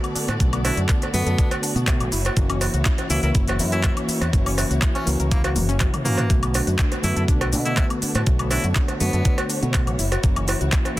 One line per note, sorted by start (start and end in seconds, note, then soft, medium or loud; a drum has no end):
0.00 0.37 D3 medium
0.00 0.37 A3 medium
0.00 0.37 B3 medium
0.00 2.08 B3 medium
0.00 0.08 B3 medium
0.00 0.38 F#4 medium
0.00 6.26 F#4 medium
0.00 2.08 A4 medium
0.00 2.09 D5 medium
0.00 closed hi-hat soft
0.00 high woodblock medium
0.04 shaker soft
0.15 0.23 D4 medium
0.15 muted fingered electric bass stroke soft
0.15 open hi-hat loud
0.15 shaker medium
0.28 0.36 A2 medium
0.28 0.35 F#4 medium
0.28 closed hi-hat soft
0.28 cowbell medium
0.28 shaker soft
0.39 0.70 B1 loud
0.39 1.10 D3 medium
0.39 1.11 A3 medium
0.39 0.45 A3 medium
0.39 1.11 B3 medium
0.39 1.11 F#4 medium
0.39 kick loud
0.39 closed hi-hat medium
0.39 shaker soft
0.53 0.60 B3 loud
0.53 closed hi-hat soft
0.53 high woodblock medium
0.53 shaker soft
0.65 0.77 D4 medium
0.65 0.79 E4 medium
0.65 open hi-hat loud
0.65 cowbell medium
0.65 shaker medium
0.77 0.85 F#2 medium
0.77 0.82 F#4 medium
0.77 closed hi-hat soft
0.77 shaker soft
0.89 0.97 D4 medium
0.89 kick loud
0.89 clap loud
0.89 closed hi-hat medium
0.89 shaker soft
1.02 1.06 B3 medium
1.02 closed hi-hat soft
1.02 cowbell medium
1.02 shaker soft
1.13 1.22 F#2 medium
1.13 1.72 D3 medium
1.13 1.72 A3 medium
1.13 1.22 A3 medium
1.13 1.51 B3 medium
1.13 1.73 B3 medium
1.13 1.73 F#4 loud
1.13 open hi-hat loud
1.13 shaker medium
1.26 1.34 F#2 medium
1.26 1.31 A4 medium
1.26 closed hi-hat soft
1.26 shaker soft
1.38 1.46 D4 loud
1.38 kick loud
1.38 closed hi-hat medium
1.38 shaker soft
1.51 1.58 F#4 loud
1.51 closed hi-hat soft
1.51 cowbell medium
1.51 shaker soft
1.63 1.75 D4 medium
1.63 open hi-hat loud
1.63 shaker medium
1.75 2.02 B2 medium
1.75 2.10 D3 medium
1.75 2.11 A3 medium
1.75 1.83 B3 medium
1.75 2.11 B3 medium
1.75 2.11 F#4 medium
1.75 closed hi-hat soft
1.75 shaker soft
1.87 1.96 A3 medium
1.87 kick loud
1.87 clap loud
1.87 closed hi-hat medium
1.87 cowbell medium
1.87 shaker soft
2.00 2.08 B1 medium
2.00 2.05 B3 medium
2.00 closed hi-hat soft
2.00 high woodblock medium
2.00 shaker soft
2.12 2.28 F#1 medium
2.12 6.26 A#3 medium
2.12 6.26 E4 medium
2.12 2.20 E4 medium
2.12 6.26 C#5 medium
2.12 open hi-hat loud
2.12 shaker medium
2.25 2.32 F#4 medium
2.25 closed hi-hat soft
2.25 cowbell medium
2.25 shaker soft
2.36 2.67 F#1 loud
2.36 3.07 E3 medium
2.36 3.08 A#3 medium
2.36 2.41 A#3 medium
2.36 3.08 C#4 medium
2.36 3.08 F#4 medium
2.36 kick loud
2.36 closed hi-hat medium
2.36 shaker soft
2.49 2.57 C#4 loud
2.49 closed hi-hat soft
2.49 high woodblock medium
2.49 shaker soft
2.61 2.73 E4 medium
2.61 open hi-hat loud
2.61 cowbell medium
2.61 shaker medium
2.74 2.81 C#2 medium
2.74 2.79 F#4 medium
2.74 closed hi-hat soft
2.74 shaker soft
2.85 2.94 E4 medium
2.85 kick loud
2.85 clap loud
2.85 closed hi-hat medium
2.85 shaker soft
2.98 3.03 C#4 medium
2.98 closed hi-hat soft
2.98 cowbell medium
2.98 shaker soft
3.09 3.18 C#2 medium
3.09 3.69 E3 medium
3.09 3.69 A#3 medium
3.09 3.19 A#3 medium
3.09 3.70 C#4 medium
3.09 3.19 E4 medium
3.09 3.70 F#4 loud
3.09 open hi-hat loud
3.09 shaker medium
3.23 3.31 C#2 medium
3.23 3.31 E4 medium
3.23 3.28 A#4 medium
3.23 closed hi-hat soft
3.23 shaker soft
3.35 3.61 F#1 loud
3.35 3.43 E4 loud
3.35 kick loud
3.35 closed hi-hat medium
3.35 shaker soft
3.48 3.55 F#4 loud
3.48 closed hi-hat soft
3.48 cowbell medium
3.48 shaker soft
3.59 3.89 F#2 loud
3.59 3.72 E4 medium
3.59 open hi-hat loud
3.59 shaker medium
3.71 4.30 E3 medium
3.71 4.30 A#3 medium
3.71 4.31 C#4 medium
3.71 3.80 C#4 medium
3.71 3.80 E4 medium
3.71 4.31 F#4 medium
3.71 closed hi-hat soft
3.71 shaker soft
3.84 3.92 A#3 medium
3.84 3.92 E4 medium
3.84 kick loud
3.84 clap loud
3.84 closed hi-hat medium
3.84 cowbell medium
3.84 shaker soft
3.97 4.01 C#4 medium
3.97 closed hi-hat soft
3.97 high woodblock medium
3.97 shaker soft
4.08 4.17 E4 medium
4.08 muted fingered electric bass stroke soft
4.08 open hi-hat loud
4.08 shaker medium
4.21 4.29 E2 medium
4.21 4.29 F#4 medium
4.21 closed hi-hat soft
4.21 cowbell medium
4.21 shaker soft
4.32 4.63 F#1 loud
4.32 5.04 E3 medium
4.32 5.04 A#3 medium
4.32 4.38 A#3 medium
4.32 5.04 C#4 medium
4.32 5.05 F#4 medium
4.32 kick loud
4.32 closed hi-hat medium
4.32 shaker soft
4.46 4.54 C#4 loud
4.46 open hi-hat medium
4.46 high woodblock medium
4.46 shaker soft
4.58 4.70 E4 medium
4.58 open hi-hat loud
4.58 cowbell medium
4.58 shaker medium
4.71 4.78 C#2 medium
4.71 4.75 F#4 medium
4.71 closed hi-hat soft
4.71 shaker soft
4.82 4.90 E4 medium
4.82 kick loud
4.82 clap loud
4.82 closed hi-hat medium
4.82 shaker soft
4.95 5.08 C#4 medium
4.95 5.00 C#4 medium
4.95 closed hi-hat soft
4.95 cowbell medium
4.95 shaker soft
5.06 5.15 C#2 medium
5.06 5.65 E3 medium
5.06 5.66 A#3 medium
5.06 5.15 A#3 medium
5.06 5.66 C#4 medium
5.06 5.66 F#4 medium
5.06 open hi-hat loud
5.06 shaker medium
5.20 5.58 C#2 medium
5.20 5.24 A#4 medium
5.20 closed hi-hat soft
5.20 shaker soft
5.31 5.40 A#3 medium
5.31 5.40 E4 loud
5.31 kick loud
5.31 closed hi-hat medium
5.31 shaker soft
5.44 5.52 A#3 medium
5.44 5.52 F#4 loud
5.44 closed hi-hat soft
5.44 cowbell medium
5.44 shaker soft
5.56 5.86 F#1 loud
5.56 5.64 A#3 medium
5.56 open hi-hat loud
5.56 high tom medium
5.56 shaker medium
5.69 5.76 C#4 loud
5.69 closed hi-hat soft
5.69 shaker soft
5.80 6.02 E3 medium
5.80 6.03 A#3 medium
5.80 6.03 C#4 medium
5.80 6.03 E4 medium
5.80 5.89 F#4 medium
5.80 kick loud
5.80 clap loud
5.80 closed hi-hat medium
5.80 mid tom medium
5.80 cowbell medium
5.80 shaker soft
5.94 6.01 A#3 medium
5.94 closed hi-hat soft
5.94 mid tom medium
5.94 high woodblock medium
5.94 shaker soft
6.05 6.27 E3 medium
6.05 6.35 A#3 medium
6.05 6.27 A#3 medium
6.05 6.13 A#3 medium
6.05 6.27 C#4 medium
6.05 6.27 F#4 loud
6.05 mid tom medium
6.05 open hi-hat medium
6.05 shaker medium
6.18 6.26 A#3 medium
6.18 closed hi-hat soft
6.18 mid tom medium
6.18 cowbell medium
6.18 shaker soft
6.29 6.60 B1 loud
6.29 7.01 D3 medium
6.29 7.01 A3 medium
6.29 6.35 A3 medium
6.29 9.95 A3 medium
6.29 9.95 D4 medium
6.29 10.99 F#4 medium
6.29 7.02 F#4 medium
6.29 8.25 B4 medium
6.29 kick loud
6.29 closed hi-hat medium
6.29 shaker soft
6.43 6.50 B3 loud
6.43 closed hi-hat soft
6.43 high woodblock medium
6.43 shaker soft
6.54 6.67 D4 medium
6.54 open hi-hat loud
6.54 cowbell medium
6.54 shaker medium
6.67 6.75 F#2 medium
6.67 6.72 F#4 medium
6.67 closed hi-hat soft
6.67 shaker soft
6.79 6.87 D4 medium
6.79 kick loud
6.79 clap loud
6.79 closed hi-hat medium
6.79 shaker soft
6.92 6.96 B3 medium
6.92 closed hi-hat soft
6.92 cowbell medium
6.92 shaker soft
7.02 7.12 F#2 medium
7.02 7.62 D3 medium
7.02 7.62 A3 medium
7.02 7.12 A3 medium
7.02 7.63 B3 medium
7.02 7.12 E4 medium
7.02 7.63 F#4 loud
7.02 open hi-hat loud
7.02 shaker medium
7.16 7.24 F#2 medium
7.16 7.24 E4 medium
7.16 7.21 A4 medium
7.16 closed hi-hat soft
7.16 shaker soft
7.28 7.54 B1 loud
7.28 7.36 D4 loud
7.28 kick loud
7.28 closed hi-hat medium
7.28 shaker soft
7.41 7.49 F#4 loud
7.41 closed hi-hat soft
7.41 cowbell loud
7.41 shaker soft
7.53 7.83 B2 loud
7.53 7.65 D4 medium
7.53 open hi-hat loud
7.53 shaker medium
7.64 8.23 D3 medium
7.64 8.24 A3 medium
7.64 8.24 B3 medium
7.64 7.73 B3 medium
7.64 7.73 E4 medium
7.64 8.24 F#4 medium
7.64 closed hi-hat soft
7.64 shaker soft
7.77 7.86 A3 medium
7.77 7.86 E4 medium
7.77 kick loud
7.77 clap loud
7.77 closed hi-hat medium
7.77 cowbell medium
7.77 shaker soft
7.90 7.95 B3 medium
7.90 closed hi-hat soft
7.90 high woodblock medium
7.90 shaker soft
8.02 8.10 D4 medium
8.02 muted fingered electric bass stroke soft
8.02 open hi-hat loud
8.02 shaker medium
8.15 8.22 A2 medium
8.15 8.23 F#4 medium
8.15 closed hi-hat soft
8.15 cowbell medium
8.15 shaker soft
8.26 8.57 B1 loud
8.26 8.97 D3 medium
8.26 8.98 A3 medium
8.26 8.32 A3 medium
8.26 8.98 B3 medium
8.26 8.98 F#4 medium
8.26 10.99 C#5 medium
8.26 kick loud
8.26 closed hi-hat medium
8.26 shaker soft
8.39 8.47 B3 loud
8.39 closed hi-hat soft
8.39 high woodblock medium
8.39 shaker soft
8.51 8.63 D4 medium
8.51 8.65 E4 medium
8.51 open hi-hat loud
8.51 cowbell medium
8.51 shaker medium
8.64 8.72 F#2 medium
8.64 8.69 F#4 medium
8.64 closed hi-hat soft
8.64 shaker soft
8.76 8.84 D4 medium
8.76 kick loud
8.76 clap loud
8.76 closed hi-hat medium
8.76 shaker soft
8.88 8.93 B3 medium
8.88 closed hi-hat soft
8.88 cowbell medium
8.88 shaker soft
9.00 9.09 F#2 medium
9.00 9.59 D3 medium
9.00 9.59 A3 medium
9.00 9.09 A3 medium
9.00 9.38 B3 medium
9.00 9.60 B3 medium
9.00 9.60 F#4 medium
9.00 open hi-hat loud
9.00 shaker medium
9.13 9.21 F#2 medium
9.13 9.18 A4 medium
9.13 closed hi-hat soft
9.13 shaker soft
9.25 9.33 D4 loud
9.25 kick loud
9.25 closed hi-hat medium
9.25 shaker soft
9.38 9.45 F#4 loud
9.38 closed hi-hat soft
9.38 cowbell loud
9.38 shaker soft
9.50 9.62 D4 medium
9.50 open hi-hat loud
9.50 shaker medium
9.62 9.88 B2 medium
9.62 9.97 D3 medium
9.62 9.97 A3 medium
9.62 9.70 B3 medium
9.62 9.98 B3 medium
9.62 9.98 F#4 medium
9.62 closed hi-hat soft
9.62 shaker soft
9.74 9.82 A3 medium
9.74 kick loud
9.74 clap loud
9.74 closed hi-hat medium
9.74 cowbell medium
9.74 shaker soft
9.87 9.94 B1 medium
9.87 9.92 B3 medium
9.87 closed hi-hat soft
9.87 high woodblock medium
9.87 shaker soft
9.99 10.15 F#1 medium
9.99 10.99 A#3 medium
9.99 10.99 E4 medium
9.99 10.07 E4 medium
9.99 open hi-hat loud
9.99 shaker medium
10.12 10.19 F#4 medium
10.12 closed hi-hat soft
10.12 cowbell medium
10.12 shaker soft
10.23 10.53 F#1 loud
10.23 10.94 E3 medium
10.23 10.95 A#3 medium
10.23 10.28 A#3 medium
10.23 10.95 C#4 medium
10.23 10.95 F#4 medium
10.23 kick loud
10.23 closed hi-hat medium
10.23 shaker soft
10.36 10.44 C#4 loud
10.36 closed hi-hat soft
10.36 high woodblock medium
10.36 shaker soft
10.48 10.60 E4 medium
10.48 open hi-hat loud
10.48 cowbell loud
10.48 shaker medium
10.61 10.68 C#2 medium
10.61 10.65 F#4 medium
10.61 closed hi-hat soft
10.61 shaker soft
10.72 10.81 E4 medium
10.72 kick loud
10.72 clap loud
10.72 closed hi-hat medium
10.72 shaker soft
10.85 10.90 C#4 medium
10.85 closed hi-hat soft
10.85 cowbell medium
10.85 shaker soft
10.96 10.99 E3 medium